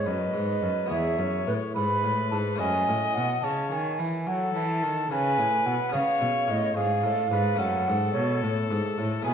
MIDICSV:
0, 0, Header, 1, 5, 480
1, 0, Start_track
1, 0, Tempo, 557103
1, 2236, Time_signature, 12, 3, 24, 8
1, 8046, End_track
2, 0, Start_track
2, 0, Title_t, "Flute"
2, 0, Program_c, 0, 73
2, 69, Note_on_c, 0, 75, 75
2, 785, Note_off_c, 0, 75, 0
2, 790, Note_on_c, 0, 76, 75
2, 1262, Note_off_c, 0, 76, 0
2, 1268, Note_on_c, 0, 71, 67
2, 1322, Note_off_c, 0, 71, 0
2, 1508, Note_on_c, 0, 83, 80
2, 1983, Note_off_c, 0, 83, 0
2, 1992, Note_on_c, 0, 81, 68
2, 2046, Note_off_c, 0, 81, 0
2, 2238, Note_on_c, 0, 80, 78
2, 2713, Note_on_c, 0, 78, 83
2, 2726, Note_off_c, 0, 80, 0
2, 2939, Note_off_c, 0, 78, 0
2, 2944, Note_on_c, 0, 81, 84
2, 3187, Note_off_c, 0, 81, 0
2, 3197, Note_on_c, 0, 80, 78
2, 3504, Note_off_c, 0, 80, 0
2, 3681, Note_on_c, 0, 78, 77
2, 3903, Note_off_c, 0, 78, 0
2, 3919, Note_on_c, 0, 81, 84
2, 4389, Note_off_c, 0, 81, 0
2, 4409, Note_on_c, 0, 80, 87
2, 4878, Note_on_c, 0, 78, 85
2, 4891, Note_off_c, 0, 80, 0
2, 5115, Note_on_c, 0, 77, 86
2, 5127, Note_off_c, 0, 78, 0
2, 5599, Note_on_c, 0, 75, 89
2, 5612, Note_off_c, 0, 77, 0
2, 5819, Note_off_c, 0, 75, 0
2, 5824, Note_on_c, 0, 77, 93
2, 6539, Note_on_c, 0, 78, 91
2, 6552, Note_off_c, 0, 77, 0
2, 7002, Note_off_c, 0, 78, 0
2, 7007, Note_on_c, 0, 73, 76
2, 7249, Note_off_c, 0, 73, 0
2, 7966, Note_on_c, 0, 80, 106
2, 8046, Note_off_c, 0, 80, 0
2, 8046, End_track
3, 0, Start_track
3, 0, Title_t, "Trumpet"
3, 0, Program_c, 1, 56
3, 49, Note_on_c, 1, 71, 53
3, 761, Note_on_c, 1, 73, 57
3, 774, Note_off_c, 1, 71, 0
3, 1499, Note_off_c, 1, 73, 0
3, 1506, Note_on_c, 1, 71, 66
3, 2229, Note_on_c, 1, 75, 78
3, 2242, Note_off_c, 1, 71, 0
3, 2965, Note_on_c, 1, 73, 61
3, 2977, Note_off_c, 1, 75, 0
3, 3443, Note_off_c, 1, 73, 0
3, 3677, Note_on_c, 1, 69, 62
3, 4363, Note_off_c, 1, 69, 0
3, 4396, Note_on_c, 1, 71, 69
3, 5098, Note_off_c, 1, 71, 0
3, 5120, Note_on_c, 1, 73, 76
3, 5826, Note_on_c, 1, 68, 65
3, 5839, Note_off_c, 1, 73, 0
3, 6072, Note_on_c, 1, 69, 62
3, 6085, Note_off_c, 1, 68, 0
3, 6293, Note_off_c, 1, 69, 0
3, 6298, Note_on_c, 1, 71, 63
3, 6537, Note_on_c, 1, 69, 74
3, 6550, Note_off_c, 1, 71, 0
3, 7962, Note_off_c, 1, 69, 0
3, 7968, Note_on_c, 1, 68, 77
3, 8046, Note_off_c, 1, 68, 0
3, 8046, End_track
4, 0, Start_track
4, 0, Title_t, "Harpsichord"
4, 0, Program_c, 2, 6
4, 0, Note_on_c, 2, 59, 40
4, 0, Note_on_c, 2, 66, 40
4, 0, Note_on_c, 2, 69, 38
4, 56, Note_on_c, 2, 42, 43
4, 272, Note_off_c, 2, 42, 0
4, 290, Note_on_c, 2, 44, 43
4, 511, Note_off_c, 2, 44, 0
4, 539, Note_on_c, 2, 42, 42
4, 730, Note_off_c, 2, 59, 0
4, 736, Note_off_c, 2, 66, 0
4, 742, Note_on_c, 2, 59, 41
4, 743, Note_off_c, 2, 69, 0
4, 753, Note_on_c, 2, 64, 38
4, 758, Note_off_c, 2, 42, 0
4, 768, Note_on_c, 2, 68, 39
4, 777, Note_on_c, 2, 40, 43
4, 997, Note_off_c, 2, 59, 0
4, 998, Note_off_c, 2, 40, 0
4, 1022, Note_on_c, 2, 42, 41
4, 1242, Note_off_c, 2, 42, 0
4, 1271, Note_on_c, 2, 45, 48
4, 1487, Note_off_c, 2, 45, 0
4, 1518, Note_on_c, 2, 44, 46
4, 1732, Note_off_c, 2, 44, 0
4, 1758, Note_on_c, 2, 45, 45
4, 1973, Note_off_c, 2, 45, 0
4, 2001, Note_on_c, 2, 44, 46
4, 2187, Note_off_c, 2, 64, 0
4, 2194, Note_off_c, 2, 68, 0
4, 2201, Note_on_c, 2, 57, 42
4, 2210, Note_on_c, 2, 61, 40
4, 2216, Note_off_c, 2, 44, 0
4, 2229, Note_on_c, 2, 66, 42
4, 2242, Note_on_c, 2, 42, 47
4, 2457, Note_off_c, 2, 42, 0
4, 2488, Note_on_c, 2, 45, 50
4, 2686, Note_off_c, 2, 57, 0
4, 2691, Note_off_c, 2, 61, 0
4, 2700, Note_off_c, 2, 45, 0
4, 2729, Note_on_c, 2, 47, 48
4, 2941, Note_off_c, 2, 47, 0
4, 2962, Note_on_c, 2, 49, 43
4, 3177, Note_off_c, 2, 49, 0
4, 3201, Note_on_c, 2, 51, 44
4, 3416, Note_off_c, 2, 51, 0
4, 3447, Note_on_c, 2, 52, 51
4, 3659, Note_off_c, 2, 52, 0
4, 3680, Note_on_c, 2, 54, 50
4, 3896, Note_off_c, 2, 54, 0
4, 3928, Note_on_c, 2, 52, 43
4, 4140, Note_off_c, 2, 52, 0
4, 4167, Note_on_c, 2, 51, 53
4, 4379, Note_off_c, 2, 51, 0
4, 4402, Note_on_c, 2, 49, 50
4, 4615, Note_off_c, 2, 49, 0
4, 4640, Note_on_c, 2, 45, 52
4, 4854, Note_off_c, 2, 45, 0
4, 4883, Note_on_c, 2, 47, 50
4, 5076, Note_off_c, 2, 66, 0
4, 5076, Note_on_c, 2, 59, 45
4, 5086, Note_on_c, 2, 61, 46
4, 5094, Note_off_c, 2, 47, 0
4, 5101, Note_on_c, 2, 68, 47
4, 5112, Note_on_c, 2, 49, 49
4, 5327, Note_off_c, 2, 49, 0
4, 5352, Note_on_c, 2, 47, 52
4, 5566, Note_off_c, 2, 47, 0
4, 5582, Note_on_c, 2, 45, 51
4, 5801, Note_off_c, 2, 45, 0
4, 5833, Note_on_c, 2, 44, 49
4, 6046, Note_off_c, 2, 44, 0
4, 6062, Note_on_c, 2, 45, 49
4, 6280, Note_off_c, 2, 45, 0
4, 6303, Note_on_c, 2, 44, 52
4, 6493, Note_off_c, 2, 59, 0
4, 6498, Note_off_c, 2, 61, 0
4, 6505, Note_off_c, 2, 68, 0
4, 6508, Note_on_c, 2, 57, 47
4, 6520, Note_off_c, 2, 44, 0
4, 6520, Note_on_c, 2, 61, 47
4, 6533, Note_on_c, 2, 69, 47
4, 6547, Note_on_c, 2, 42, 52
4, 6758, Note_off_c, 2, 57, 0
4, 6762, Note_off_c, 2, 42, 0
4, 6765, Note_off_c, 2, 61, 0
4, 6787, Note_on_c, 2, 44, 48
4, 7002, Note_off_c, 2, 44, 0
4, 7022, Note_on_c, 2, 47, 57
4, 7238, Note_off_c, 2, 47, 0
4, 7271, Note_on_c, 2, 45, 52
4, 7481, Note_off_c, 2, 45, 0
4, 7502, Note_on_c, 2, 44, 58
4, 7715, Note_off_c, 2, 44, 0
4, 7738, Note_on_c, 2, 45, 55
4, 7936, Note_off_c, 2, 69, 0
4, 7944, Note_on_c, 2, 57, 53
4, 7952, Note_off_c, 2, 45, 0
4, 7957, Note_on_c, 2, 63, 49
4, 7969, Note_on_c, 2, 71, 52
4, 7983, Note_on_c, 2, 47, 57
4, 8046, Note_off_c, 2, 47, 0
4, 8046, Note_off_c, 2, 57, 0
4, 8046, Note_off_c, 2, 63, 0
4, 8046, Note_off_c, 2, 71, 0
4, 8046, End_track
5, 0, Start_track
5, 0, Title_t, "Cello"
5, 0, Program_c, 3, 42
5, 58, Note_on_c, 3, 42, 52
5, 292, Note_off_c, 3, 42, 0
5, 300, Note_on_c, 3, 44, 53
5, 530, Note_off_c, 3, 44, 0
5, 536, Note_on_c, 3, 42, 54
5, 604, Note_off_c, 3, 42, 0
5, 779, Note_on_c, 3, 40, 53
5, 1025, Note_on_c, 3, 42, 50
5, 1038, Note_off_c, 3, 40, 0
5, 1266, Note_off_c, 3, 42, 0
5, 1271, Note_on_c, 3, 45, 57
5, 1340, Note_off_c, 3, 45, 0
5, 1511, Note_on_c, 3, 44, 56
5, 1751, Note_on_c, 3, 45, 54
5, 1764, Note_off_c, 3, 44, 0
5, 1993, Note_on_c, 3, 44, 59
5, 2006, Note_off_c, 3, 45, 0
5, 2232, Note_off_c, 3, 44, 0
5, 2238, Note_on_c, 3, 42, 64
5, 2474, Note_off_c, 3, 42, 0
5, 2480, Note_on_c, 3, 45, 54
5, 2549, Note_off_c, 3, 45, 0
5, 2721, Note_on_c, 3, 47, 54
5, 2950, Note_off_c, 3, 47, 0
5, 2956, Note_on_c, 3, 49, 57
5, 3193, Note_off_c, 3, 49, 0
5, 3199, Note_on_c, 3, 51, 57
5, 3434, Note_on_c, 3, 52, 54
5, 3447, Note_off_c, 3, 51, 0
5, 3675, Note_on_c, 3, 54, 59
5, 3688, Note_off_c, 3, 52, 0
5, 3909, Note_off_c, 3, 54, 0
5, 3914, Note_on_c, 3, 52, 57
5, 4161, Note_on_c, 3, 51, 58
5, 4174, Note_off_c, 3, 52, 0
5, 4390, Note_off_c, 3, 51, 0
5, 4395, Note_on_c, 3, 49, 58
5, 4636, Note_on_c, 3, 45, 58
5, 4649, Note_off_c, 3, 49, 0
5, 4871, Note_off_c, 3, 45, 0
5, 4876, Note_on_c, 3, 47, 62
5, 4945, Note_off_c, 3, 47, 0
5, 5119, Note_on_c, 3, 49, 68
5, 5188, Note_off_c, 3, 49, 0
5, 5356, Note_on_c, 3, 47, 57
5, 5425, Note_off_c, 3, 47, 0
5, 5594, Note_on_c, 3, 45, 61
5, 5827, Note_off_c, 3, 45, 0
5, 5831, Note_on_c, 3, 44, 62
5, 6066, Note_on_c, 3, 45, 64
5, 6079, Note_off_c, 3, 44, 0
5, 6299, Note_off_c, 3, 45, 0
5, 6304, Note_on_c, 3, 44, 64
5, 6540, Note_off_c, 3, 44, 0
5, 6545, Note_on_c, 3, 42, 65
5, 6787, Note_on_c, 3, 44, 65
5, 6800, Note_off_c, 3, 42, 0
5, 7020, Note_off_c, 3, 44, 0
5, 7025, Note_on_c, 3, 47, 62
5, 7260, Note_on_c, 3, 45, 68
5, 7273, Note_off_c, 3, 47, 0
5, 7492, Note_off_c, 3, 45, 0
5, 7497, Note_on_c, 3, 44, 62
5, 7566, Note_off_c, 3, 44, 0
5, 7739, Note_on_c, 3, 45, 72
5, 7969, Note_off_c, 3, 45, 0
5, 7975, Note_on_c, 3, 47, 69
5, 8046, Note_off_c, 3, 47, 0
5, 8046, End_track
0, 0, End_of_file